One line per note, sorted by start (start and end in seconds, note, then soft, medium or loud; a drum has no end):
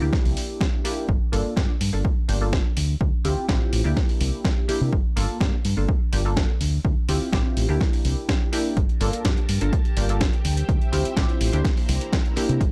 0.00 0.09 D2 medium
0.00 0.82 A#3 medium
0.00 0.82 D4 medium
0.00 0.82 E4 medium
0.00 0.82 G4 medium
0.13 kick loud
0.13 snare medium
0.25 0.33 C2 medium
0.25 open hi-hat medium
0.37 open hi-hat loud
0.61 kick loud
0.61 snare loud
0.84 1.07 A#3 loud
0.84 1.07 D4 medium
0.84 1.08 E4 medium
0.84 1.08 G4 loud
0.84 open hi-hat loud
1.09 1.17 G1 medium
1.09 kick loud
1.32 1.41 G1 loud
1.32 1.54 A#3 medium
1.32 1.54 D4 medium
1.32 1.54 F4 medium
1.32 1.54 A4 loud
1.32 open hi-hat loud
1.56 1.65 G2 medium
1.56 1.71 A#3 medium
1.56 1.71 D4 medium
1.56 1.71 F4 medium
1.56 1.72 G4 medium
1.56 kick loud
1.56 snare loud
1.81 1.89 G2 medium
1.81 open hi-hat loud
1.93 2.01 G1 medium
1.93 2.07 A#3 medium
1.93 2.07 D4 medium
1.93 2.07 F4 medium
1.93 2.07 A4 medium
2.05 kick loud
2.28 2.59 G1 medium
2.28 2.39 A#3 medium
2.28 2.39 D4 medium
2.28 2.40 F4 medium
2.28 2.40 G4 medium
2.28 open hi-hat loud
2.41 2.64 A#3 medium
2.41 2.64 D4 medium
2.41 2.64 F4 medium
2.41 2.64 A4 medium
2.53 kick loud
2.53 snare loud
2.77 2.94 D2 medium
2.77 open hi-hat loud
3.01 3.09 D2 medium
3.01 kick loud
3.24 3.33 D2 loud
3.24 3.46 C4 medium
3.24 3.46 E4 medium
3.24 3.46 F4 medium
3.24 3.46 G4 loud
3.24 open hi-hat medium
3.37 muted fingered electric bass stroke soft
3.48 3.57 A1 medium
3.48 3.82 C4 medium
3.48 3.82 E4 medium
3.48 3.82 F4 medium
3.48 3.82 G4 loud
3.48 kick loud
3.48 snare loud
3.73 3.81 A1 medium
3.73 open hi-hat loud
3.84 3.93 D2 medium
3.84 4.66 A#3 medium
3.84 4.66 D4 medium
3.84 4.66 E4 medium
3.84 4.66 G4 medium
3.97 kick loud
3.97 snare medium
4.09 open hi-hat medium
4.21 4.29 C2 loud
4.21 open hi-hat loud
4.45 kick loud
4.45 snare loud
4.68 4.91 A#3 medium
4.68 4.91 D4 medium
4.68 4.91 E4 medium
4.68 4.92 G4 loud
4.68 muted fingered electric bass stroke soft
4.68 open hi-hat loud
4.81 4.89 C3 medium
4.93 5.01 G1 medium
4.93 kick loud
5.16 5.25 G1 loud
5.16 5.38 A#3 medium
5.16 5.38 D4 medium
5.16 5.38 F4 medium
5.16 5.38 A4 loud
5.16 open hi-hat medium
5.40 5.49 G2 medium
5.40 5.55 A#3 medium
5.40 5.55 D4 medium
5.40 5.55 F4 medium
5.40 5.56 G4 medium
5.40 kick loud
5.40 snare loud
5.65 5.73 G2 medium
5.65 open hi-hat medium
5.77 5.85 G1 medium
5.77 5.91 A#3 medium
5.77 5.91 D4 medium
5.77 5.91 F4 medium
5.77 5.91 A4 medium
5.89 kick loud
6.12 6.43 G1 medium
6.12 6.23 A#3 medium
6.12 6.23 D4 medium
6.12 6.24 F4 medium
6.12 6.24 G4 medium
6.12 open hi-hat loud
6.25 6.48 A#3 medium
6.25 6.48 D4 medium
6.25 6.48 F4 medium
6.25 6.48 A4 medium
6.37 kick loud
6.37 snare loud
6.61 6.77 D2 medium
6.61 open hi-hat loud
6.85 6.93 D2 medium
6.85 kick loud
7.08 7.17 D2 loud
7.08 7.30 C4 medium
7.08 7.30 E4 medium
7.08 7.30 F4 medium
7.08 7.30 G4 medium
7.08 open hi-hat medium
7.21 muted fingered electric bass stroke soft
7.32 7.41 A1 medium
7.32 7.66 C4 medium
7.32 7.66 E4 medium
7.32 7.66 F4 medium
7.32 7.67 G4 loud
7.32 kick loud
7.32 snare loud
7.57 7.65 A1 medium
7.57 open hi-hat medium
7.69 7.77 D2 medium
7.69 8.50 A#3 medium
7.69 8.50 D4 medium
7.69 8.50 E4 medium
7.69 8.50 G4 medium
7.81 kick loud
7.81 snare medium
7.93 open hi-hat medium
8.05 8.13 C2 medium
8.05 open hi-hat loud
8.29 kick loud
8.29 snare loud
8.52 8.75 A#3 medium
8.52 8.75 D4 medium
8.52 8.76 E4 medium
8.52 8.76 G4 loud
8.52 open hi-hat loud
8.77 8.85 G1 medium
8.77 11.62 G4 medium
8.77 10.43 A#4 medium
8.77 10.43 A5 medium
8.77 kick loud
8.77 closed hi-hat medium
8.77 maracas soft
8.89 closed hi-hat soft
9.00 9.09 G1 loud
9.00 9.22 A#3 loud
9.00 9.22 D4 medium
9.00 9.22 F4 medium
9.00 9.22 A4 loud
9.00 open hi-hat loud
9.00 maracas medium
9.13 closed hi-hat medium
9.13 maracas soft
9.25 9.33 G2 medium
9.25 9.39 A#3 medium
9.25 9.39 D4 medium
9.25 9.40 F4 medium
9.25 9.40 G4 medium
9.25 kick loud
9.25 snare loud
9.25 closed hi-hat medium
9.37 closed hi-hat soft
9.49 9.57 G2 medium
9.49 open hi-hat loud
9.49 maracas medium
9.61 9.69 G1 medium
9.61 9.75 A#3 medium
9.61 9.75 D4 medium
9.61 9.75 F4 medium
9.61 9.75 A4 medium
9.61 closed hi-hat medium
9.61 maracas soft
9.73 kick loud
9.73 closed hi-hat medium
9.73 maracas soft
9.85 closed hi-hat soft
9.97 10.27 G1 medium
9.97 10.07 A#3 medium
9.97 10.08 D4 medium
9.97 10.08 F4 medium
9.97 10.08 G4 medium
9.97 open hi-hat loud
9.97 maracas medium
10.09 10.32 A#3 medium
10.09 10.32 D4 medium
10.09 10.32 F4 medium
10.09 10.32 A4 medium
10.09 closed hi-hat medium
10.09 maracas soft
10.21 kick loud
10.21 snare loud
10.21 closed hi-hat medium
10.21 maracas soft
10.33 closed hi-hat soft
10.45 10.62 D2 medium
10.45 12.59 C5 medium
10.45 11.64 E5 medium
10.45 11.64 G5 medium
10.45 open hi-hat loud
10.45 maracas medium
10.57 closed hi-hat medium
10.57 maracas soft
10.68 10.77 D2 medium
10.68 kick loud
10.68 closed hi-hat medium
10.68 maracas soft
10.81 closed hi-hat soft
10.92 11.01 D2 loud
10.92 11.14 C4 medium
10.92 11.14 E4 medium
10.92 11.14 F4 medium
10.92 11.14 G4 loud
10.92 open hi-hat loud
10.92 maracas medium
11.05 muted fingered electric bass stroke soft
11.05 closed hi-hat soft
11.05 maracas medium
11.16 11.25 A1 medium
11.16 11.50 C4 medium
11.16 11.50 E4 medium
11.16 11.50 F4 medium
11.16 11.51 G4 loud
11.16 kick loud
11.16 snare loud
11.16 closed hi-hat medium
11.16 maracas soft
11.29 closed hi-hat soft
11.41 11.49 A1 medium
11.41 open hi-hat loud
11.41 maracas medium
11.52 11.61 D2 medium
11.52 12.34 A#3 medium
11.52 12.34 D4 medium
11.52 12.34 E4 medium
11.52 12.34 G4 medium
11.52 closed hi-hat soft
11.52 maracas medium
11.64 12.60 E4 medium
11.64 12.60 A#5 medium
11.64 kick loud
11.64 snare medium
11.64 closed hi-hat soft
11.64 maracas soft
11.77 open hi-hat medium
11.89 11.97 C2 loud
11.89 open hi-hat loud
11.89 maracas medium
12.01 closed hi-hat medium
12.01 maracas soft
12.13 kick loud
12.13 snare loud
12.13 closed hi-hat medium
12.25 closed hi-hat soft
12.36 12.59 A#3 loud
12.36 12.59 D4 medium
12.36 12.59 E4 medium
12.36 12.60 G4 loud
12.36 muted fingered electric bass stroke soft
12.36 open hi-hat loud
12.36 maracas medium
12.49 12.57 C3 medium
12.49 closed hi-hat medium
12.49 maracas medium
12.60 12.69 G1 medium
12.60 12.72 G4 medium
12.60 12.72 A#4 medium
12.60 12.72 A5 medium
12.60 kick loud
12.60 closed hi-hat soft
12.60 maracas soft